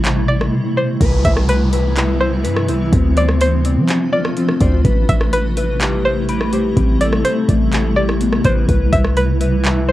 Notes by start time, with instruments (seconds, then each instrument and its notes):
Already playing: 808-style bass A1, ambient pad B2 C3 G3 A3 E4, synth pluck C5
0.05 clap, closed hi-hat
0.28 synth pluck D5
0.41 cross-stick
0.77 synth pluck C5
1.01 808-style bass C2, ambient pad C3 E3 G3 B3 E4, clean electric guitar B4, kick, closed hi-hat, downlifter
1.25 808-style bass C2, synth pluck E5, kick, closed hi-hat
1.37 cross-stick
1.49 synth pluck B4, closed hi-hat
1.73 clean electric guitar B4, closed hi-hat
1.97 clean electric guitar E4, clap, closed hi-hat
2.21 synth pluck C5
2.44 808-style bass G2, clean electric guitar B4, closed hi-hat
2.57 cross-stick
2.69 808-style bass C2, clean electric guitar E4, closed hi-hat
2.93 808-style bass D2, ambient pad F3 A3 D4 F4, clean electric guitar C4, kick, closed hi-hat
3.17 clean electric guitar C5, synth pluck D5, closed hi-hat
3.29 cross-stick
3.41 synth pluck C5, closed hi-hat
3.65 clean electric guitar C4, closed hi-hat
3.77 808-style bass F3
3.88 clap, closed hi-hat
4.13 clean electric guitar F4, synth pluck D5
4.25 cross-stick
4.37 clean electric guitar C4, closed hi-hat
4.49 cross-stick
4.61 808-style bass D2, clean electric guitar C5, kick, closed hi-hat
4.85 808-style bass A1, ambient pad C3 G3 E4, clean electric guitar B4, kick, closed hi-hat
5.09 808-style bass A1, synth pluck E5, kick, closed hi-hat
5.21 cross-stick
5.33 synth pluck B4, closed hi-hat
5.57 clean electric guitar B4, closed hi-hat
5.80 clean electric guitar G4, clap, closed hi-hat
6.05 synth pluck C5
6.29 clean electric guitar B5, closed hi-hat
6.41 cross-stick
6.53 clean electric guitar G4, closed hi-hat
6.77 808-style bass A1, clean electric guitar C4, kick, closed hi-hat
7.01 clean electric guitar A4, synth pluck D5, closed hi-hat
7.13 cross-stick
7.25 synth pluck C5, closed hi-hat
7.49 808-style bass A1, clean electric guitar A3, kick, closed hi-hat
7.73 clap, closed hi-hat
7.96 clean electric guitar G4, synth pluck D5
8.09 cross-stick
8.21 clean electric guitar B3, closed hi-hat
8.33 cross-stick
8.45 808-style bass A1, clean electric guitar B4, synth pluck C5, kick, closed hi-hat
8.68 808-style bass C2, ambient pad E3, clean electric guitar B4, kick, closed hi-hat
8.92 808-style bass C2, synth pluck E5, kick, closed hi-hat
9.05 cross-stick
9.17 synth pluck B4, closed hi-hat
9.41 clean electric guitar B4, closed hi-hat
9.64 clean electric guitar E4, clap, closed hi-hat
9.89 synth pluck C5